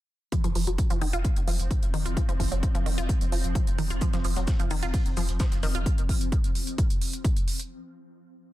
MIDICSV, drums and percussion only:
0, 0, Header, 1, 2, 480
1, 0, Start_track
1, 0, Tempo, 461538
1, 336, Time_signature, 4, 2, 24, 8
1, 8871, End_track
2, 0, Start_track
2, 0, Title_t, "Drums"
2, 335, Note_on_c, 9, 36, 109
2, 336, Note_on_c, 9, 42, 94
2, 439, Note_off_c, 9, 36, 0
2, 440, Note_off_c, 9, 42, 0
2, 459, Note_on_c, 9, 42, 52
2, 563, Note_off_c, 9, 42, 0
2, 576, Note_on_c, 9, 46, 100
2, 680, Note_off_c, 9, 46, 0
2, 699, Note_on_c, 9, 42, 52
2, 803, Note_off_c, 9, 42, 0
2, 815, Note_on_c, 9, 36, 115
2, 815, Note_on_c, 9, 42, 90
2, 919, Note_off_c, 9, 36, 0
2, 919, Note_off_c, 9, 42, 0
2, 939, Note_on_c, 9, 42, 53
2, 1043, Note_off_c, 9, 42, 0
2, 1055, Note_on_c, 9, 46, 99
2, 1159, Note_off_c, 9, 46, 0
2, 1179, Note_on_c, 9, 42, 51
2, 1283, Note_off_c, 9, 42, 0
2, 1295, Note_on_c, 9, 36, 115
2, 1296, Note_on_c, 9, 42, 97
2, 1399, Note_off_c, 9, 36, 0
2, 1400, Note_off_c, 9, 42, 0
2, 1419, Note_on_c, 9, 42, 53
2, 1523, Note_off_c, 9, 42, 0
2, 1535, Note_on_c, 9, 46, 103
2, 1639, Note_off_c, 9, 46, 0
2, 1659, Note_on_c, 9, 42, 55
2, 1763, Note_off_c, 9, 42, 0
2, 1774, Note_on_c, 9, 36, 117
2, 1775, Note_on_c, 9, 42, 97
2, 1878, Note_off_c, 9, 36, 0
2, 1879, Note_off_c, 9, 42, 0
2, 1899, Note_on_c, 9, 42, 53
2, 2003, Note_off_c, 9, 42, 0
2, 2016, Note_on_c, 9, 46, 100
2, 2120, Note_off_c, 9, 46, 0
2, 2140, Note_on_c, 9, 42, 57
2, 2244, Note_off_c, 9, 42, 0
2, 2254, Note_on_c, 9, 36, 122
2, 2256, Note_on_c, 9, 42, 94
2, 2358, Note_off_c, 9, 36, 0
2, 2360, Note_off_c, 9, 42, 0
2, 2380, Note_on_c, 9, 42, 51
2, 2484, Note_off_c, 9, 42, 0
2, 2494, Note_on_c, 9, 36, 56
2, 2496, Note_on_c, 9, 46, 106
2, 2598, Note_off_c, 9, 36, 0
2, 2600, Note_off_c, 9, 46, 0
2, 2620, Note_on_c, 9, 42, 54
2, 2724, Note_off_c, 9, 42, 0
2, 2734, Note_on_c, 9, 36, 126
2, 2735, Note_on_c, 9, 42, 96
2, 2838, Note_off_c, 9, 36, 0
2, 2839, Note_off_c, 9, 42, 0
2, 2859, Note_on_c, 9, 42, 54
2, 2963, Note_off_c, 9, 42, 0
2, 2976, Note_on_c, 9, 46, 104
2, 3080, Note_off_c, 9, 46, 0
2, 3100, Note_on_c, 9, 42, 52
2, 3204, Note_off_c, 9, 42, 0
2, 3214, Note_on_c, 9, 36, 123
2, 3216, Note_on_c, 9, 42, 96
2, 3318, Note_off_c, 9, 36, 0
2, 3320, Note_off_c, 9, 42, 0
2, 3340, Note_on_c, 9, 42, 55
2, 3444, Note_off_c, 9, 42, 0
2, 3456, Note_on_c, 9, 46, 108
2, 3560, Note_off_c, 9, 46, 0
2, 3579, Note_on_c, 9, 42, 53
2, 3683, Note_off_c, 9, 42, 0
2, 3694, Note_on_c, 9, 36, 123
2, 3695, Note_on_c, 9, 42, 99
2, 3798, Note_off_c, 9, 36, 0
2, 3799, Note_off_c, 9, 42, 0
2, 3819, Note_on_c, 9, 42, 56
2, 3923, Note_off_c, 9, 42, 0
2, 3936, Note_on_c, 9, 46, 100
2, 4040, Note_off_c, 9, 46, 0
2, 4060, Note_on_c, 9, 42, 55
2, 4164, Note_off_c, 9, 42, 0
2, 4174, Note_on_c, 9, 36, 121
2, 4175, Note_on_c, 9, 82, 88
2, 4176, Note_on_c, 9, 42, 91
2, 4278, Note_off_c, 9, 36, 0
2, 4279, Note_off_c, 9, 82, 0
2, 4280, Note_off_c, 9, 42, 0
2, 4298, Note_on_c, 9, 38, 55
2, 4299, Note_on_c, 9, 42, 52
2, 4402, Note_off_c, 9, 38, 0
2, 4403, Note_off_c, 9, 42, 0
2, 4415, Note_on_c, 9, 46, 109
2, 4415, Note_on_c, 9, 82, 67
2, 4519, Note_off_c, 9, 46, 0
2, 4519, Note_off_c, 9, 82, 0
2, 4538, Note_on_c, 9, 42, 45
2, 4539, Note_off_c, 9, 42, 0
2, 4539, Note_on_c, 9, 42, 53
2, 4643, Note_off_c, 9, 42, 0
2, 4654, Note_on_c, 9, 36, 126
2, 4654, Note_on_c, 9, 38, 115
2, 4654, Note_on_c, 9, 82, 83
2, 4655, Note_on_c, 9, 42, 94
2, 4758, Note_off_c, 9, 36, 0
2, 4758, Note_off_c, 9, 38, 0
2, 4758, Note_off_c, 9, 82, 0
2, 4759, Note_off_c, 9, 42, 0
2, 4779, Note_on_c, 9, 42, 53
2, 4883, Note_off_c, 9, 42, 0
2, 4895, Note_on_c, 9, 82, 68
2, 4896, Note_on_c, 9, 46, 103
2, 4999, Note_off_c, 9, 82, 0
2, 5000, Note_off_c, 9, 46, 0
2, 5018, Note_on_c, 9, 42, 44
2, 5019, Note_off_c, 9, 42, 0
2, 5019, Note_on_c, 9, 42, 53
2, 5123, Note_off_c, 9, 42, 0
2, 5134, Note_on_c, 9, 46, 79
2, 5135, Note_on_c, 9, 36, 125
2, 5135, Note_on_c, 9, 42, 93
2, 5238, Note_off_c, 9, 46, 0
2, 5239, Note_off_c, 9, 36, 0
2, 5239, Note_off_c, 9, 42, 0
2, 5259, Note_on_c, 9, 42, 54
2, 5363, Note_off_c, 9, 42, 0
2, 5375, Note_on_c, 9, 82, 67
2, 5376, Note_on_c, 9, 46, 116
2, 5479, Note_off_c, 9, 82, 0
2, 5480, Note_off_c, 9, 46, 0
2, 5498, Note_on_c, 9, 42, 45
2, 5499, Note_off_c, 9, 42, 0
2, 5499, Note_on_c, 9, 42, 55
2, 5603, Note_off_c, 9, 42, 0
2, 5615, Note_on_c, 9, 36, 115
2, 5615, Note_on_c, 9, 38, 115
2, 5615, Note_on_c, 9, 42, 91
2, 5615, Note_on_c, 9, 82, 91
2, 5719, Note_off_c, 9, 36, 0
2, 5719, Note_off_c, 9, 38, 0
2, 5719, Note_off_c, 9, 42, 0
2, 5719, Note_off_c, 9, 82, 0
2, 5739, Note_on_c, 9, 38, 54
2, 5739, Note_on_c, 9, 42, 53
2, 5843, Note_off_c, 9, 38, 0
2, 5843, Note_off_c, 9, 42, 0
2, 5855, Note_on_c, 9, 38, 40
2, 5855, Note_on_c, 9, 82, 66
2, 5856, Note_on_c, 9, 46, 109
2, 5959, Note_off_c, 9, 38, 0
2, 5959, Note_off_c, 9, 82, 0
2, 5960, Note_off_c, 9, 46, 0
2, 5978, Note_on_c, 9, 42, 57
2, 6082, Note_off_c, 9, 42, 0
2, 6095, Note_on_c, 9, 36, 116
2, 6096, Note_on_c, 9, 42, 93
2, 6199, Note_off_c, 9, 36, 0
2, 6200, Note_off_c, 9, 42, 0
2, 6220, Note_on_c, 9, 42, 52
2, 6324, Note_off_c, 9, 42, 0
2, 6335, Note_on_c, 9, 36, 59
2, 6336, Note_on_c, 9, 46, 111
2, 6439, Note_off_c, 9, 36, 0
2, 6440, Note_off_c, 9, 46, 0
2, 6459, Note_on_c, 9, 42, 53
2, 6563, Note_off_c, 9, 42, 0
2, 6574, Note_on_c, 9, 36, 125
2, 6575, Note_on_c, 9, 42, 90
2, 6678, Note_off_c, 9, 36, 0
2, 6679, Note_off_c, 9, 42, 0
2, 6699, Note_on_c, 9, 42, 49
2, 6803, Note_off_c, 9, 42, 0
2, 6816, Note_on_c, 9, 46, 108
2, 6920, Note_off_c, 9, 46, 0
2, 6939, Note_on_c, 9, 42, 51
2, 7043, Note_off_c, 9, 42, 0
2, 7055, Note_on_c, 9, 36, 124
2, 7055, Note_on_c, 9, 42, 92
2, 7159, Note_off_c, 9, 36, 0
2, 7159, Note_off_c, 9, 42, 0
2, 7179, Note_on_c, 9, 42, 53
2, 7283, Note_off_c, 9, 42, 0
2, 7295, Note_on_c, 9, 46, 110
2, 7399, Note_off_c, 9, 46, 0
2, 7420, Note_on_c, 9, 42, 53
2, 7524, Note_off_c, 9, 42, 0
2, 7535, Note_on_c, 9, 36, 117
2, 7536, Note_on_c, 9, 42, 92
2, 7639, Note_off_c, 9, 36, 0
2, 7640, Note_off_c, 9, 42, 0
2, 7660, Note_on_c, 9, 42, 53
2, 7764, Note_off_c, 9, 42, 0
2, 7776, Note_on_c, 9, 46, 113
2, 7880, Note_off_c, 9, 46, 0
2, 7899, Note_on_c, 9, 42, 54
2, 8003, Note_off_c, 9, 42, 0
2, 8871, End_track
0, 0, End_of_file